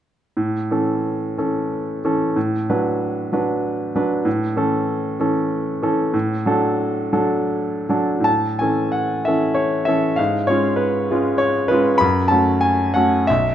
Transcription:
0.37 0.69 A2 soft
0.71 1.34 E3 soft
0.71 1.34 C#4 soft
0.71 1.34 A4 soft
1.38 2.00 E3 soft
1.38 2.00 C#4 soft
1.38 2.00 A4 soft
2.05 2.33 E3 soft
2.05 2.33 C#4 soft
2.05 2.33 A4 soft
2.36 2.67 A2 soft
2.70 3.29 F#3 soft
2.70 3.29 D4 soft
2.70 3.29 B4 soft
3.33 3.91 F#3 soft
3.33 3.91 D4 soft
3.33 3.91 B4 soft
3.95 4.23 F#3 soft
3.95 4.23 D4 soft
3.95 4.23 B4 soft
4.25 4.55 A2 medium
4.56 5.15 E3 soft
4.56 5.16 C#4 soft
4.56 5.16 A4 soft
5.20 5.78 E3 soft
5.20 5.79 C#4 soft
5.20 5.79 A4 soft
5.83 6.11 E3 soft
5.83 6.11 C#4 soft
5.83 6.11 A4 soft
6.13 6.45 A2 medium
6.46 7.09 F#3 soft
6.46 7.10 D4 soft
6.46 7.10 A4 soft
7.13 7.84 F#3 soft
7.13 7.84 D4 soft
7.13 7.84 A4 soft
7.89 8.23 F#3 soft
7.89 8.23 D4 soft
7.89 8.23 A4 soft
8.20 8.56 A2 soft
8.24 8.59 A5 medium
8.59 9.23 E3 soft
8.59 9.23 C#4 soft
8.59 9.23 A4 soft
8.59 8.93 G#5 medium
8.92 9.25 F#5 medium
9.25 9.84 E3 soft
9.25 9.84 C#4 soft
9.25 9.85 A4 soft
9.25 9.57 E5 medium
9.55 9.86 C#5 medium
9.85 10.15 E3 soft
9.85 10.16 C#4 soft
9.85 10.16 A4 soft
9.85 10.17 E5 medium
10.16 10.49 G#2 soft
10.16 10.48 F5 medium
10.47 11.07 G#3 soft
10.47 11.07 C#4 soft
10.47 11.07 F4 soft
10.47 10.79 C#5 medium
10.76 11.39 B4 medium
11.11 11.66 G#3 soft
11.11 11.67 C#4 soft
11.11 11.67 F4 soft
11.38 11.69 C#5 medium
11.68 11.98 G#3 soft
11.68 11.98 C#4 soft
11.68 11.98 F4 soft
11.68 11.99 B4 medium
11.98 12.31 F#2 medium
11.98 12.30 B5 medium
12.28 12.91 A3 soft
12.28 12.91 C#4 soft
12.28 12.92 F#4 soft
12.28 12.62 A5 medium
12.61 12.94 G#5 medium
12.94 13.25 A3 soft
12.94 13.25 C#4 soft
12.94 13.26 F#4 soft
12.94 13.28 F#5 medium
13.27 13.55 B1 medium
13.27 13.55 E5 medium

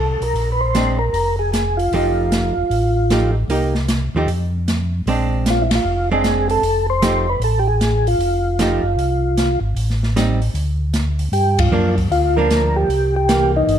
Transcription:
0.00 0.17 C2 medium
0.00 0.23 A4 medium
0.20 0.34 B1 medium
0.20 0.50 A#4 medium
0.20 open hi-hat soft
0.34 1.09 A#1 medium
0.34 open hi-hat soft
0.52 0.61 B4 medium
0.61 0.97 C5 medium
0.75 0.98 G#3 medium
0.75 0.98 C4 medium
0.75 0.98 D4 medium
0.75 snare medium
0.75 closed hi-hat soft
0.99 1.36 A#4 loud
1.13 1.88 F1 medium
1.13 open hi-hat soft
1.39 1.51 G#4 medium
1.52 1.79 G#4 medium
1.52 snare medium
1.52 closed hi-hat soft
1.77 3.31 F4 medium
1.77 open hi-hat soft
1.92 2.53 F1 medium
1.92 2.53 F3 soft
1.92 2.53 A3 medium
1.92 2.53 D#4 medium
1.92 2.53 G4 medium
1.92 open hi-hat soft
2.32 snare medium
2.32 closed hi-hat soft
2.56 2.63 F1 soft
2.70 3.45 A1 medium
2.70 open hi-hat soft
3.10 3.34 F3 soft
3.10 3.34 A3 soft
3.10 3.34 D#4 soft
3.10 3.34 G4 soft
3.10 snare medium
3.10 closed hi-hat soft
3.48 4.09 C2 medium
3.48 3.73 A#3 medium
3.48 3.73 D#4 medium
3.48 3.73 G4 medium
3.48 open hi-hat soft
3.75 snare soft
3.88 snare medium
3.88 closed hi-hat soft
4.15 4.27 D#2 medium
4.15 4.27 F3 medium
4.15 4.28 A3 medium
4.15 4.28 D#4 medium
4.15 4.28 G4 medium
4.27 5.02 F2 medium
4.27 open hi-hat soft
4.68 snare medium
4.68 closed hi-hat soft
5.06 5.80 A#1 medium
5.06 5.67 G#3 medium
5.06 5.67 C4 medium
5.06 5.67 D4 medium
5.06 open hi-hat soft
5.46 snare medium
5.46 closed hi-hat medium
5.50 5.63 F4 medium
5.62 5.71 E4 medium
5.71 snare medium
5.71 ride medium
5.75 6.10 F4 medium
5.84 6.59 F1 medium
6.12 6.61 G#3 medium
6.12 6.61 C4 medium
6.12 6.61 D4 medium
6.12 6.48 G#4 medium
6.24 snare medium
6.24 closed hi-hat soft
6.50 6.86 A4 loud
6.50 open hi-hat soft
6.62 7.37 F1 medium
6.62 open hi-hat soft
6.90 7.29 C5 loud
7.02 7.25 F3 medium
7.02 7.25 A3 medium
7.02 7.26 D#4 medium
7.02 7.26 G4 medium
7.02 snare medium
7.02 closed hi-hat medium
7.29 7.42 B4 medium
7.40 8.15 A1 medium
7.40 open hi-hat soft
7.44 7.59 A4 medium
7.59 7.68 G4 medium
7.67 8.07 G#4 medium
7.81 snare medium
7.81 closed hi-hat soft
8.07 9.60 F4 medium
8.07 open hi-hat soft
8.19 8.80 F1 medium
8.19 open hi-hat soft
8.59 8.82 F3 medium
8.59 8.82 A3 medium
8.59 8.83 D#4 medium
8.59 8.83 G4 medium
8.59 snare medium
8.59 closed hi-hat soft
8.83 8.96 F#1 medium
8.96 9.58 C2 medium
8.96 open hi-hat soft
9.38 snare medium
9.38 closed hi-hat soft
9.61 9.74 G#1 medium
9.75 10.50 A1 medium
9.75 open hi-hat soft
9.90 snare soft
10.03 snare soft
10.16 10.39 G3 medium
10.16 10.39 C4 medium
10.16 10.39 D#4 medium
10.16 snare medium
10.16 closed hi-hat soft
10.42 open hi-hat soft
10.54 11.29 D2 medium
10.54 open hi-hat soft
10.94 snare medium
10.94 closed hi-hat soft
11.19 open hi-hat soft
11.32 11.69 G2 medium
11.32 11.59 G4 medium
11.32 open hi-hat soft
11.59 11.95 F4 medium
11.59 kick medium
11.59 ride medium
11.71 12.08 F#2 medium
11.71 11.95 F3 medium
11.71 11.95 A#3 medium
11.71 11.96 D4 medium
11.98 kick soft
11.98 open hi-hat soft
12.10 12.85 D2 medium
12.10 12.38 F4 medium
12.10 open hi-hat soft
12.37 12.87 F3 medium
12.37 12.87 A#3 medium
12.37 12.88 D4 medium
12.37 12.77 A#4 loud
12.51 snare medium
12.51 closed hi-hat soft
12.76 13.15 G4 loud
12.88 13.63 C2 medium
12.88 open hi-hat soft
13.16 13.52 G4 medium
13.29 13.79 E3 soft
13.29 13.79 A#3 medium
13.29 snare medium
13.29 closed hi-hat soft
13.57 13.79 D#4 medium
13.67 13.79 G1 medium
13.67 open hi-hat soft

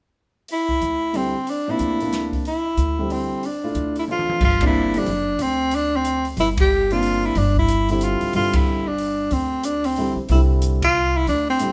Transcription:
0.48 1.18 E4 medium
0.48 open hi-hat soft
0.69 kick soft
0.81 1.33 D2 medium
0.81 closed hi-hat soft
1.13 1.32 D3 medium
1.13 1.32 G3 soft
1.13 1.32 C4 soft
1.13 1.52 C4 medium
1.13 1.32 E4 medium
1.13 open hi-hat soft
1.47 1.72 D4 medium
1.47 open hi-hat soft
1.68 1.98 C3 medium
1.68 1.98 F3 medium
1.68 1.98 A#3 medium
1.68 1.98 D4 medium
1.68 2.34 E4 medium
1.79 2.31 D2 medium
1.79 closed hi-hat soft
2.00 2.43 C3 medium
2.00 2.43 F3 soft
2.00 2.43 A#3 soft
2.00 2.43 D4 medium
2.00 open hi-hat soft
2.13 snare soft
2.13 closed hi-hat soft
2.32 kick soft
2.32 open hi-hat soft
2.45 3.13 E4 medium
2.45 open hi-hat soft
2.77 3.29 D2 medium
2.77 closed hi-hat soft
2.98 3.41 D3 medium
2.98 3.41 G3 medium
2.98 3.41 C4 medium
2.98 3.41 E4 medium
3.10 3.47 C4 medium
3.10 open hi-hat soft
3.43 3.98 D4 medium
3.43 open hi-hat soft
3.64 4.06 A3 medium
3.64 4.06 D4 medium
3.64 4.06 E4 medium
3.64 4.06 F4 medium
3.75 4.27 D2 medium
3.75 closed hi-hat soft
3.96 4.04 E4 medium
3.96 open hi-hat soft
4.08 4.41 F3 medium
4.08 4.41 A3 soft
4.08 4.41 D4 soft
4.08 4.41 F4 medium
4.08 4.40 F4 medium
4.08 high tom soft
4.19 high tom soft
4.30 high tom medium
4.40 5.02 G1 medium
4.40 4.62 F4 medium
4.40 kick medium
4.40 crash medium
4.61 4.92 C3 medium
4.61 4.92 F3 medium
4.61 4.92 A#3 medium
4.61 4.93 D4 medium
4.61 kick medium
4.61 ride medium
4.66 4.99 E4 medium
4.94 5.05 D3 medium
4.94 5.05 G3 medium
4.94 5.05 C4 medium
4.94 5.43 D4 medium
4.94 5.06 E4 medium
4.94 open hi-hat soft
5.06 5.37 F#1 medium
5.06 open hi-hat soft
5.39 6.33 D2 medium
5.39 5.76 C4 medium
5.39 open hi-hat soft
5.71 5.97 D4 medium
5.71 open hi-hat soft
5.96 6.27 C4 medium
6.05 closed hi-hat soft
6.25 open hi-hat soft
6.37 7.31 G1 medium
6.37 6.49 E4 medium
6.37 open hi-hat soft
6.57 6.94 G4 medium
6.57 kick medium
6.57 ride medium
6.90 7.33 C3 medium
6.90 7.33 F3 medium
6.90 7.33 A#3 medium
6.90 7.33 D4 medium
6.90 7.27 F4 medium
6.90 open hi-hat soft
7.03 open hi-hat soft
7.26 7.39 E4 medium
7.35 8.17 G1 medium
7.35 7.57 D4 medium
7.35 open hi-hat soft
7.56 7.88 E4 medium
7.56 kick medium
7.68 closed hi-hat medium
7.89 8.31 D3 medium
7.89 8.31 G3 medium
7.89 8.31 C4 medium
7.89 8.31 E4 medium
7.89 8.05 E4 medium
7.89 open hi-hat soft
8.01 8.35 F4 medium
8.01 closed hi-hat soft
8.21 muted upright bass stroke soft
8.21 open hi-hat soft
8.33 9.28 G1 medium
8.33 8.83 D3 medium
8.33 8.83 G3 soft
8.33 8.83 C4 soft
8.33 8.83 E4 medium
8.33 8.57 F4 medium
8.33 open hi-hat soft
8.53 8.89 E4 medium
8.53 kick medium
8.53 ride medium
8.88 9.34 D4 medium
8.98 open hi-hat soft
9.31 10.13 D2 medium
9.31 9.67 C4 medium
9.31 open hi-hat soft
9.63 9.87 D4 medium
9.63 closed hi-hat medium
9.84 10.18 C4 medium
9.84 open hi-hat soft
9.96 10.16 D3 medium
9.96 10.16 G3 soft
9.96 10.16 C4 soft
9.96 10.16 E4 medium
9.96 open hi-hat soft
10.16 muted upright bass stroke soft
10.29 11.23 C2 medium
10.29 10.79 D3 medium
10.29 10.79 G3 medium
10.29 10.79 C4 medium
10.29 10.79 E4 medium
10.29 10.40 E4 medium
10.29 open hi-hat soft
10.62 closed hi-hat soft
10.82 11.18 F4 loud
10.82 kick medium
10.82 ride medium
11.17 11.28 E4 medium
11.27 11.72 D2 medium
11.27 11.47 D4 medium
11.27 open hi-hat soft
11.49 11.72 C4 medium
11.59 11.72 D3 medium
11.59 11.72 G3 medium
11.59 11.72 C4 medium
11.59 11.72 E4 medium
11.59 closed hi-hat medium

